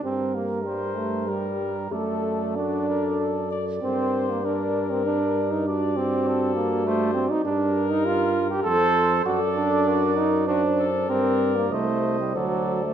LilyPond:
<<
  \new Staff \with { instrumentName = "Trumpet" } { \time 3/4 \key g \minor \tempo 4 = 97 bes'2. | d''2.~ | d''2. | d''2. |
bes'2 c''4 | d''2 d''4 | d''4 ees''4 d''4 | }
  \new Staff \with { instrumentName = "Cornet" } { \time 3/4 \key g \minor r4 c''4 bes'4 | a'4 fis'8 bes'8 a'8 d''8 | c''4 bes'2 | d''4 a'4 c''8 r8 |
bes'2 c''4 | a'4 fis'4 fis'8 a'8 | bes'4 c''4 a'4 | }
  \new Staff \with { instrumentName = "French horn" } { \time 3/4 \key g \minor g'2. | a'2. | bes'2. | fis'2. |
g'2 a'4 | a'4 bes'4 c''4 | bes'4 c''4 c''4 | }
  \new Staff \with { instrumentName = "Trombone" } { \time 3/4 \key g \minor c'8 bes8 g8 a8 g4 | a4 d'4. r8 | c'8. bes16 d'8. c'16 d'8. ees'16 | d'8 c'4 bes8 a8 c'16 ees'16 |
d'8. ees'16 f'8. g'16 a'4 | fis'8 d'4 ees'8 d'8. r16 | c'8. bes16 a8. g16 fis8. a16 | }
  \new Staff \with { instrumentName = "Tuba" } { \clef bass \time 3/4 \key g \minor g,2. | fis,2. | g,2.~ | g,2. |
g,2 f,4 | fis,2. | g,4 c,4 d,4 | }
>>